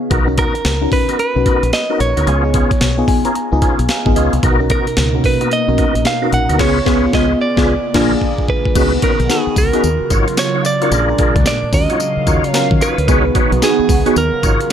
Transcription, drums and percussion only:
0.11 kick, closed hi-hat
0.38 kick, closed hi-hat
0.55 closed hi-hat
0.65 snare, closed hi-hat
0.92 kick, open hi-hat
1.09 closed hi-hat
1.19 closed hi-hat
1.46 kick, closed hi-hat
1.63 closed hi-hat
1.73 snare, closed hi-hat
2.00 closed hi-hat
2.17 closed hi-hat
2.27 closed hi-hat
2.54 kick, closed hi-hat
2.71 kick, closed hi-hat
2.81 snare, closed hi-hat
3.08 kick, open hi-hat
3.25 closed hi-hat
3.35 closed hi-hat
3.62 kick, closed hi-hat
3.79 closed hi-hat
3.89 snare, closed hi-hat
4.06 kick
4.16 closed hi-hat
4.33 closed hi-hat
4.43 kick, closed hi-hat
4.70 kick, closed hi-hat
4.87 closed hi-hat
4.97 snare, closed hi-hat
5.24 kick, open hi-hat
5.41 closed hi-hat
5.51 closed hi-hat
5.78 kick, closed hi-hat
5.95 closed hi-hat
6.05 snare, closed hi-hat
6.33 closed hi-hat
6.49 closed hi-hat
6.59 kick, snare, crash
6.86 kick, snare
7.13 kick, snare
7.57 kick, snare
7.94 kick, snare, crash
8.21 kick
8.38 kick
8.48 kick
8.65 kick
8.75 kick, closed hi-hat, crash, tambourine
9.02 kick, closed hi-hat
9.20 closed hi-hat
9.30 snare, closed hi-hat, tambourine
9.56 kick, open hi-hat, tambourine
9.73 closed hi-hat
9.84 closed hi-hat, tambourine
10.10 kick, closed hi-hat, tambourine
10.28 closed hi-hat
10.37 snare, closed hi-hat, tambourine
10.65 closed hi-hat, tambourine
10.82 closed hi-hat
10.92 closed hi-hat, tambourine
11.18 kick, closed hi-hat
11.36 kick, closed hi-hat
11.46 snare, closed hi-hat, tambourine
11.73 kick, open hi-hat, tambourine
11.90 closed hi-hat
12.00 closed hi-hat, tambourine
12.27 kick, closed hi-hat, tambourine
12.44 closed hi-hat
12.54 snare, closed hi-hat, tambourine
12.71 kick
12.81 closed hi-hat, tambourine
12.98 closed hi-hat
13.08 kick, closed hi-hat, tambourine
13.35 kick, closed hi-hat
13.52 closed hi-hat
13.62 snare, closed hi-hat, tambourine
13.89 kick, open hi-hat, tambourine
14.06 closed hi-hat
14.16 closed hi-hat, tambourine
14.43 kick, closed hi-hat, tambourine
14.61 closed hi-hat

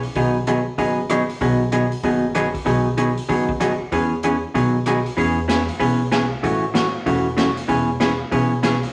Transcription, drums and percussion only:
0.03 open hi-hat
0.15 kick, open hi-hat
0.47 closed hi-hat
0.78 kick, open hi-hat
1.10 cross-stick, closed hi-hat
1.29 open hi-hat
1.41 kick, open hi-hat
1.72 closed hi-hat
1.92 open hi-hat
2.03 kick, open hi-hat
2.35 cross-stick, closed hi-hat
2.54 kick, open hi-hat
2.66 kick, open hi-hat
2.98 closed hi-hat
3.17 open hi-hat
3.29 kick, open hi-hat
3.49 kick
3.61 cross-stick, closed hi-hat
3.92 kick, open hi-hat
4.23 closed hi-hat
4.55 kick, open hi-hat
4.86 cross-stick, closed hi-hat
5.06 open hi-hat
5.17 kick, open hi-hat
5.49 snare, closed hi-hat
5.68 open hi-hat
5.80 kick, open hi-hat
6.12 snare, closed hi-hat
6.44 kick, open hi-hat
6.75 snare, closed hi-hat
7.06 kick, open hi-hat
7.38 snare, closed hi-hat
7.57 open hi-hat
7.69 kick, open hi-hat
8.00 snare, closed hi-hat
8.32 kick, open hi-hat
8.63 snare, closed hi-hat
8.83 open hi-hat

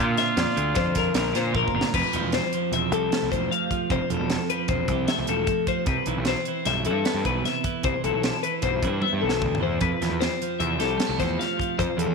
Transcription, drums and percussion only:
0.17 snare, closed hi-hat
0.37 snare, closed hi-hat
0.57 closed hi-hat
0.75 kick, snare, closed hi-hat
0.95 kick, snare, closed hi-hat
1.14 snare, closed hi-hat
1.35 snare, closed hi-hat
1.55 kick
1.68 kick
1.81 snare
1.94 kick, crash
2.13 closed hi-hat
2.32 snare, closed hi-hat
2.53 closed hi-hat
2.73 closed hi-hat
2.92 closed hi-hat
3.12 snare, closed hi-hat
3.32 kick, closed hi-hat
3.52 closed hi-hat
3.71 kick, closed hi-hat
3.90 kick, closed hi-hat
4.10 closed hi-hat
4.30 snare, closed hi-hat
4.50 closed hi-hat
4.68 kick, closed hi-hat
4.88 kick, closed hi-hat
5.08 snare, closed hi-hat
5.27 closed hi-hat
5.47 kick, closed hi-hat
5.67 kick, closed hi-hat
5.86 kick, closed hi-hat
6.06 closed hi-hat
6.25 snare, closed hi-hat
6.45 closed hi-hat
6.65 snare, closed hi-hat
6.85 closed hi-hat
7.05 snare, closed hi-hat
7.25 kick, closed hi-hat
7.45 snare, closed hi-hat
7.64 kick, closed hi-hat
7.83 kick, closed hi-hat
8.04 closed hi-hat
8.23 snare, closed hi-hat
8.43 closed hi-hat
8.62 kick, closed hi-hat
8.83 kick, closed hi-hat
9.02 high tom
9.29 snare
9.42 kick, mid tom
9.55 floor tom
9.81 kick, closed hi-hat
10.02 snare, closed hi-hat
10.21 snare, closed hi-hat
10.42 closed hi-hat
10.60 closed hi-hat
10.80 snare, closed hi-hat
11.00 snare, closed hi-hat
11.20 kick, snare, closed hi-hat
11.41 snare, closed hi-hat
11.60 kick, closed hi-hat
11.79 kick, closed hi-hat
11.99 closed hi-hat

